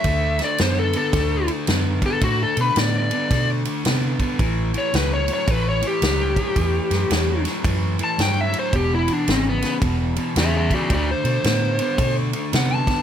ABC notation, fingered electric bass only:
X:1
M:4/4
L:1/8
Q:"Swing" 1/4=111
K:Amix
V:1 name="Fingered electric bass" clef=bass
D,,2 F,,2 D,,2 F,,2 | A,, B,, A,,2 B,,2 =C,2 | A,,,2 C,,2 A,,,2 C,,2 | E,, F,, E,,2 F,,2 G,,2 |
E,,,2 ^G,,,2 E,,,2 E,,2 | D,, B,, A,,2 B,,2 =C,2 |]